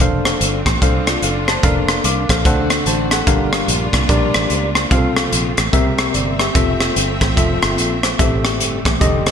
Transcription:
0.00 F1 C4 D4 F4 A4 C5 F5, kick, closed hi-hat
0.25 cross-stick, closed hi-hat
0.41 G1, closed hi-hat
0.66 A1, kick, cross-stick, closed hi-hat
0.82 C2 D4 A4 C5 F5, kick, closed hi-hat
1.07 F4 D5, cross-stick, closed hi-hat
1.22 F#1 A4 F5, closed hi-hat
1.48 C5 A5, cross-stick, closed hi-hat
1.63 F1 A#3 D4 A4 A#4 F5, kick, closed hi-hat
1.89 cross-stick, closed hi-hat
2.04 C2 F5 D6, closed hi-hat
2.29 A#1 A4 F5, kick, cross-stick, closed hi-hat
2.44 D2 D3 C4 D4 F#4 A4 C5 F#5, kick, closed hi-hat
2.70 cross-stick, closed hi-hat
2.86 A1 C5 A5, closed hi-hat
3.11 A4 F#5, cross-stick, closed hi-hat
3.27 G1 G2 G3 A#3 D4 F4 G4 A#4 F5, kick, closed hi-hat
3.53 cross-stick, closed hi-hat
3.68 A#1, closed hi-hat
3.93 C2, kick, cross-stick, closed hi-hat
4.09 A#1 D4 G4 A#4 D5, kick, closed hi-hat
4.34 A1, cross-stick, closed hi-hat
4.50 C#2, closed hi-hat
4.75 cross-stick, closed hi-hat
4.91 C2 C3 F3 A3 C4 F4 G4 F5, kick, closed hi-hat
4.97 A4
5.17 cross-stick, closed hi-hat
5.32 A#1, closed hi-hat
5.57 A1, cross-stick, closed hi-hat
5.73 C2 C3 G3 A#3 C4 G4 A#4 E5, kick, closed hi-hat
5.98 cross-stick, closed hi-hat
6.14 G1 D5, closed hi-hat
6.39 G4 E5, cross-stick, closed hi-hat
6.55 F1 F3 A3 C4 F4 A4 E5, kick, closed hi-hat
6.81 cross-stick, closed hi-hat
6.96 G1, closed hi-hat
7.21 A1, kick, cross-stick, closed hi-hat
7.37 F1 C4 F4 A4 E5, kick, closed hi-hat
7.62 G1, cross-stick, closed hi-hat
7.78 A#1, closed hi-hat
8.03 cross-stick, closed hi-hat
8.19 A1 A2 G3 C4 G4 A4 E5, kick, closed hi-hat
8.45 cross-stick, closed hi-hat
8.60 G1, closed hi-hat
8.85 A1, kick, cross-stick, closed hi-hat
9.01 F1 D3 C4 G4 A4 D#5, kick, closed hi-hat
9.26 cross-stick, closed hi-hat

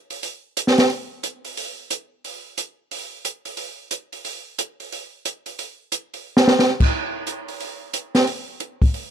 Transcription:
0.10 open hi-hat
0.23 open hi-hat
0.57 closed hi-hat
0.67 snare
0.78 snare, open hi-hat
0.90 open hi-hat
1.23 closed hi-hat
1.45 open hi-hat
1.57 open hi-hat
1.90 closed hi-hat
2.24 open hi-hat
2.58 closed hi-hat
2.91 open hi-hat
3.25 closed hi-hat
3.45 open hi-hat
3.57 open hi-hat
3.91 closed hi-hat
4.12 open hi-hat
4.25 open hi-hat
4.58 closed hi-hat
4.80 open hi-hat
4.92 open hi-hat
5.25 closed hi-hat
5.46 open hi-hat
5.59 open hi-hat
5.92 closed hi-hat
6.14 open hi-hat
6.37 snare
6.48 snare
6.59 snare
6.80 kick, crash
7.27 closed hi-hat
7.48 open hi-hat
7.60 open hi-hat
7.93 closed hi-hat
8.15 snare, open hi-hat
8.27 open hi-hat
8.60 closed hi-hat
8.82 kick, open hi-hat
8.94 open hi-hat

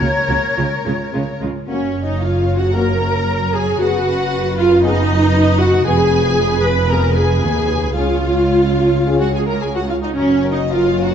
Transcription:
Already playing: C#3 A#4 C#5
0.00 C#2 C#3 A#3
0.29 C#2 C#3 A#3 F#4
0.56 C#2 C#3 G#3 F4
0.85 C#2 C#3 G#3 F4
1.13 C#2 C#3 G#3 F4
1.41 C#2 C#3 G#3 F4
1.67 F#1 F#2 A#3 C#4 F#4 C#5
2.04 D#4 D#5
2.21 F4 F5
2.58 F#4 F#5
2.75 A#3 F#4 A#4 C#5 A#5
3.55 G#4 G#5
3.80 F#1 F#2 B3 F#4 G#4 B4 F#5
4.58 F4 F5
4.83 B3 D#4 G#4 B4 D#5
5.60 F#4 F#5
5.84 F1 F2 B3 G#4 B4 G#5
6.63 B4 B5
6.90 B3 G#4 A#4 A#5
7.16 G#4 G#5
7.43 D#2
7.96 C#2 C#4 F4 G#4 C#5 F5
9.07 C#4 G#4
9.20 F#4 F#5
9.34 G#4 G#5
9.48 A#4 A#5
9.61 G#4 G#5
9.75 F#4 F#5
9.89 F4 F5
10.03 D#4 D#5
10.15 F#1 F#2 C#4 F#4 A#4 C#5
10.29 C#5
10.43 A#4
10.52 D#4 C#5 D#5
10.70 F4 A#4 F5
10.84 C#5
10.97 A#4
11.05 F#4 F#5
11.11 C#5

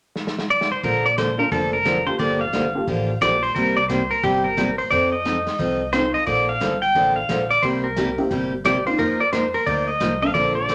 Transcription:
0.16 snare
0.27 snare
0.38 snare
0.50 D5
0.61 snare
0.72 C5
0.83 A#1 D3 F3 A#3 D4 A4 A#4, kick, open hi-hat
1.06 D5
1.18 D3 F3 A#3 D4 A4 C5, snare, closed hi-hat
1.38 A#3 D4 F4 A4 A#4
1.51 F1 D3 F3 A#3 D4 A4, kick, open hi-hat
1.73 A#4
1.85 D3 F3 A#3 D4 A4, snare, closed hi-hat
2.06 A#3 F4 G4 A4 C5
2.19 G1 D3 F3 A#3 D4 G4 D5, kick, open hi-hat
2.41 F5
2.53 G1 D3 F3 A#3 D4 G4, snare, closed hi-hat
2.75 A#3 F4 G4 A4
2.87 A1 D3 F3 A#3 D4 G4, kick, open hi-hat
3.21 A#1 D3 F3 A#3 D4 G4 D5, snare, closed hi-hat
3.43 C5, open hi-hat
3.55 C2 C3 G3 A#3 E4 G4 A#4, kick, open hi-hat
3.77 D5
3.88 C3 G3 A#3 E4 G4 C5, snare, closed hi-hat
4.11 A#4, open hi-hat
4.23 G1 C3 G3 A#3 E4 G4, kick, open hi-hat
4.44 A#4
4.57 C3 G3 A#3 E4 G4, snare, closed hi-hat
4.78 C5, open hi-hat
4.90 F2 F3 C4 D#4 A4 D5, kick, open hi-hat
5.12 D#5
5.25 F3 C4 D#4 A4, snare, closed hi-hat
5.47 snare, open hi-hat
5.59 C2 F3 C4 D#4 A4, kick, open hi-hat
5.93 F3 C4 D#4 F4 A4 C5, snare, closed hi-hat
6.14 D#5, open hi-hat
6.26 A#1 D3 F3 A#3 D4 A4 D5, kick, open hi-hat
6.49 F5
6.60 G1 D3 F3 A#3 D4 A4, snare, closed hi-hat
6.82 G5, open hi-hat
6.95 A1 D3 F3 A#3 D4 A4, kick, open hi-hat
7.16 F5
7.29 A#1 D3 F3 A#3 D4 A4, snare, closed hi-hat
7.50 D5, open hi-hat
7.63 C2 C3 G3 A#3 E4 G4 C5, kick, open hi-hat
7.84 A#4
7.97 C3 G3 A#3 E4 G4, snare, closed hi-hat
8.18 A#3 C4 E4 G4, open hi-hat
8.31 G1 C3 G3 A#3 E4 G4, kick, open hi-hat
8.65 C3 G3 A#3 E4 G4 D5, snare, closed hi-hat
8.86 A#3 C4 D#4 F4 C5, open hi-hat
8.98 F2 F3 A#3 D#4 F4 A#4, kick, open hi-hat
9.20 D5
9.33 F3 A#3 D#4 F4 A#4 C5, snare, closed hi-hat
9.54 A#4, open hi-hat
9.66 D2 F3 A#3 D#4 F4 A#4 D5, kick, open hi-hat
9.88 D#5
10.00 C2 F3 A#3 D#4 F4 A#4, snare, closed hi-hat
10.22 A#3 C4 D4 A4 F5, open hi-hat
10.34 A#1 D3 F3 A#3 D4 A4 D5, kick, open hi-hat
10.55 D5
10.69 D3 F3 A#3 D4 A4, snare, closed hi-hat

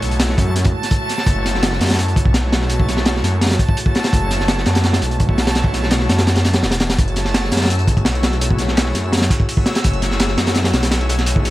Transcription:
Already playing: B1 G#3 A3 E4 F#4 C#5 A5
0.02 closed hi-hat
0.11 closed hi-hat
0.20 snare, closed hi-hat
0.29 snare
0.38 F#2, kick, closed hi-hat
0.56 snare, closed hi-hat
0.64 kick, closed hi-hat
0.83 snare, closed hi-hat
0.91 kick, closed hi-hat
1.09 snare, closed hi-hat
1.18 snare
1.26 F#1 G#3 A3 E4 F#4 C#5, kick, closed hi-hat
1.45 snare, closed hi-hat
1.55 snare
1.63 snare, closed hi-hat
1.72 snare
1.81 F#2, snare, closed hi-hat
1.86 snare, closed hi-hat
1.90 snare, closed hi-hat
1.94 snare, closed hi-hat
1.99 closed hi-hat
2.08 closed hi-hat
2.16 B1, kick, closed hi-hat
2.25 kick
2.34 snare, closed hi-hat
2.52 snare, closed hi-hat
2.62 snare
2.70 G#3 A3 E4 F#4 C#5, closed hi-hat
2.80 kick
2.88 snare, closed hi-hat
2.97 snare
3.06 snare, closed hi-hat
3.16 snare
3.23 F#2, snare, closed hi-hat
3.41 snare, closed hi-hat
3.46 snare, closed hi-hat
3.51 snare, closed hi-hat
3.59 kick, closed hi-hat
3.69 kick
3.77 closed hi-hat
3.86 kick
3.95 snare, closed hi-hat
4.04 snare, closed hi-hat
4.13 F#1 G#3 A3 E4 F#4 C#5, kick, closed hi-hat
4.31 snare, closed hi-hat
4.40 snare
4.48 snare, closed hi-hat
4.58 snare
4.66 F#2, snare, closed hi-hat
4.75 snare, closed hi-hat
4.84 snare, closed hi-hat
4.93 snare, closed hi-hat
5.02 B1, closed hi-hat
5.11 closed hi-hat
5.20 kick, closed hi-hat
5.29 kick
5.38 snare, closed hi-hat
5.47 snare, closed hi-hat
5.55 G#3 A3 E4 F#4 C#5, snare, closed hi-hat
5.64 kick
5.73 snare, closed hi-hat
5.83 snare
5.91 snare, closed hi-hat
6.00 snare
6.09 F#2, snare, closed hi-hat
6.18 snare, closed hi-hat
6.27 snare, closed hi-hat
6.36 snare, closed hi-hat
6.45 snare, closed hi-hat
6.53 snare, closed hi-hat
6.63 E1, snare, closed hi-hat
6.71 snare, closed hi-hat
6.80 snare, closed hi-hat
6.90 snare, closed hi-hat
6.98 F#1 A3 E4 F#4 G#4 C#5 E6, kick, closed hi-hat
7.08 closed hi-hat
7.16 snare, closed hi-hat
7.25 snare
7.34 snare, closed hi-hat
7.44 snare
7.52 F#2, snare, closed hi-hat
7.57 snare, closed hi-hat
7.61 snare, closed hi-hat
7.65 snare, closed hi-hat
7.70 closed hi-hat
7.79 closed hi-hat
7.87 B1, kick, closed hi-hat
7.97 kick, closed hi-hat
8.05 snare, closed hi-hat
8.15 closed hi-hat
8.23 snare, closed hi-hat
8.33 snare, closed hi-hat
8.41 A3 E4 F#4 G#4 C#5, closed hi-hat
8.51 kick
8.59 snare, closed hi-hat
8.68 snare
8.77 snare, closed hi-hat
8.86 snare
8.95 F#2, snare, closed hi-hat
9.13 snare, closed hi-hat
9.17 snare, closed hi-hat
9.22 snare, closed hi-hat
9.30 kick, snare, closed hi-hat
9.40 kick
9.49 closed hi-hat, open hi-hat
9.57 kick
9.66 snare, closed hi-hat
9.75 snare, closed hi-hat
9.84 F#1 A3 E4 F#4 G#4 C#5, kick, closed hi-hat
9.93 closed hi-hat
10.02 snare, closed hi-hat
10.11 snare
10.20 snare, closed hi-hat
10.28 snare
10.38 F#2, snare, closed hi-hat
10.47 snare, closed hi-hat
10.55 snare, closed hi-hat
10.64 snare, closed hi-hat
10.74 B1, snare, closed hi-hat
10.83 snare, closed hi-hat
10.91 snare, closed hi-hat
11.01 closed hi-hat
11.09 snare, closed hi-hat
11.18 snare, closed hi-hat
11.26 A3 E4 F#4 G#4 C#5, closed hi-hat
11.36 kick
11.45 closed hi-hat

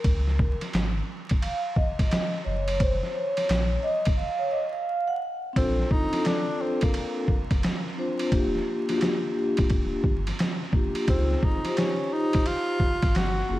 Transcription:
Already playing: A#4
0.04 C#2, kick, ride
0.27 snare
0.39 kick
0.61 snare, ride
0.74 G#1, snare, hi-hat pedal, ride
1.29 kick, ride
1.42 F5, ride
1.76 D#5, kick
1.99 kick, snare, ride
2.11 snare, hi-hat pedal, ride
2.34 snare
2.45 F#1 C#5
2.68 ride
2.79 C5, kick, ride
3.03 snare
3.14 C#5
3.37 snare, ride
3.49 A#1, snare, hi-hat pedal, ride
3.83 D#5
4.05 kick, ride
4.17 F5
4.39 C#5
4.51 D#5
4.73 F5
5.07 F#5
5.53 A#1 C4 D4 F4 A4, kick, ride
5.57 C4
5.79 snare
5.91 D#4, kick
6.10 C4 D4 F4 A4, snare, ride
6.25 D4, snare, hi-hat pedal, ride
6.61 C4
6.81 A#3, kick, ride
6.94 ride
7.28 kick
7.51 F1, kick, snare, ride
7.63 snare, hi-hat pedal, ride
7.86 snare
7.95 C4 D4 F4 C5
8.19 ride
8.30 D#1 A#3 D4 F4 G4, kick, ride
8.55 snare
8.86 A#3 D4 F4 F#4, snare, ride
8.96 G4
9.01 snare, hi-hat pedal, ride
9.57 D1, kick, ride
9.70 kick, ride
10.04 G1, kick
10.27 snare, ride
10.39 snare, hi-hat pedal, ride
10.62 snare
10.72 A#3 D4 F4 G4, kick
10.95 ride
11.06 C#2 C4 D#4 F4 G#4, kick, ride
11.31 snare
11.43 D#4, kick
11.63 D#4 F4 G4 C5, snare, ride
11.77 C#4, snare, hi-hat pedal, ride
12.13 D#4
12.33 kick, ride
12.46 F4, ride
12.80 kick
13.02 G#1, kick, snare, ride
13.15 G1 F#4, snare, hi-hat pedal, ride
13.38 snare
13.48 F#1 A#3 C#4 F4 G#4

